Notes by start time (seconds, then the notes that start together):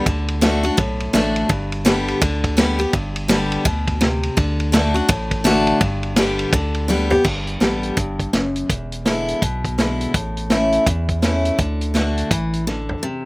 0.06 D2 D3, kick, ride
0.28 ride
0.41 D3 A3 D4 F#4, snare, ride
0.63 D4 F#4, ride
0.77 B1 A2, kick, ride
1.00 ride
1.13 A1 D3 A3 D4 F#4, snare, ride
1.36 ride
1.49 G1 G2, kick, ride
1.72 ride
1.85 D3 G3 B3 G4, snare, ride
2.08 ride
2.22 D2 D3, kick, ride
2.44 kick, ride
2.57 D3 G3 B3 G4, snare, ride
2.79 B3 G4, ride
2.93 G1 G2, kick, ride
3.16 ride
3.28 D3 G3 B3 G4, snare, ride
3.52 ride
3.65 D2 B2, kick, ride
3.88 kick, ride
4.01 C3, snare, ride
4.23 ride
4.37 D2 D3, kick, ride
4.60 ride
4.72 D3 A3 D4 F#4, snare, ride
4.94 D4 F#4, ride
5.09 A1 A2, kick, ride
5.31 kick, ride
5.44 D3 A3 D4 F#4, snare, ride
5.67 ride
5.81 G1 G2, kick, ride
6.03 ride
6.16 D3 G3 B3 G4, snare, ride
6.39 ride
6.52 D2 D3, kick, ride
6.74 ride
6.88 D3 G3 B3 G4, snare
7.10 B3 G4, floor tom
7.24 G1 G2, kick, crash
7.47 closed hi-hat
7.60 A1 D3 G3 B3 G4, snare, closed hi-hat
7.83 closed hi-hat
7.97 G1 G2, kick, closed hi-hat
8.20 kick, closed hi-hat
8.33 F#1 F#2, snare, closed hi-hat
8.56 closed hi-hat
8.69 E1 E2, kick, closed hi-hat
8.92 closed hi-hat
9.05 D3 G#3 B3 E4, snare, closed hi-hat
9.28 closed hi-hat
9.42 B1 B2, kick, closed hi-hat
9.64 kick, closed hi-hat
9.78 D3 G#3 B3 E4, snare, closed hi-hat
10.01 closed hi-hat
10.14 A1 A2, kick, closed hi-hat
10.37 closed hi-hat
10.50 E3 A3 C#4 E4, snare, closed hi-hat
10.72 closed hi-hat
10.86 E2, kick, closed hi-hat
11.09 kick, closed hi-hat
11.22 E3 A3 C#4 E4, snare, closed hi-hat
11.45 closed hi-hat
11.58 D2 D3, kick, closed hi-hat
11.81 closed hi-hat
11.94 D3 A3 D4 F#4, snare, closed hi-hat
12.17 closed hi-hat
12.31 A1 E3, kick, closed hi-hat
12.53 closed hi-hat
12.67 D3, snare
12.89 floor tom
13.03 C3